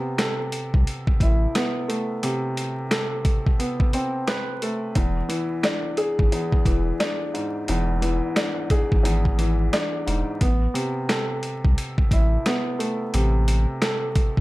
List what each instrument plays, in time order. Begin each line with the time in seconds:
Already playing: upright piano C3 B3
0.18 upright piano A4, cross-stick, snare, closed hi-hat
0.52 closed hi-hat
0.74 sub bass C2, kick
0.87 closed hi-hat
1.07 kick
1.20 sub bass A1, upright piano E4, kick, closed hi-hat
1.55 upright piano B3, cross-stick, snare, closed hi-hat
1.88 upright piano A3, closed hi-hat
2.23 upright piano C3, closed hi-hat
2.57 closed hi-hat
2.91 upright piano A4, cross-stick, snare, closed hi-hat
3.25 kick, closed hi-hat
3.46 kick
3.59 upright piano B3, closed hi-hat
3.80 kick
3.93 upright piano C4, closed hi-hat
4.28 upright piano B4, cross-stick, snare, closed hi-hat
4.62 upright piano A3, closed hi-hat
4.95 sub bass E1, upright piano E2, kick, closed hi-hat
5.29 upright piano E3, closed hi-hat
5.63 upright piano D4, cross-stick, snare, closed hi-hat
5.97 upright piano G#4, closed hi-hat
6.19 sub bass G#1, kick
6.32 upright piano E2, closed hi-hat
6.52 kick
6.65 sub bass E1, upright piano E3, kick, closed hi-hat
7.00 upright piano D4, cross-stick, snare, closed hi-hat
7.34 upright piano G#2, closed hi-hat
7.68 sub bass E1, upright piano E2, closed hi-hat
8.02 upright piano E3, closed hi-hat
8.36 upright piano D4, cross-stick, snare, closed hi-hat
8.70 upright piano G#4, kick, closed hi-hat
8.92 sub bass G#1, kick
9.03 upright piano E2, closed hi-hat
9.25 kick
9.38 upright piano E3, closed hi-hat
9.73 upright piano D4, cross-stick, snare, closed hi-hat
10.07 sub bass E1, upright piano G#2, closed hi-hat
10.41 sub bass A1, upright piano B3, kick, closed hi-hat
10.74 upright piano C3, closed hi-hat
11.09 upright piano A4, cross-stick, snare, closed hi-hat
11.43 closed hi-hat
11.65 sub bass C2, kick
11.78 closed hi-hat
11.98 kick
12.11 sub bass A1, upright piano E4, kick, closed hi-hat
12.46 upright piano B3, cross-stick, snare, closed hi-hat
12.79 upright piano A3, closed hi-hat
13.14 sub bass A1, upright piano C3, closed hi-hat
13.48 closed hi-hat
13.82 upright piano A4, cross-stick, snare, closed hi-hat
14.16 kick, closed hi-hat
14.37 sub bass C2, kick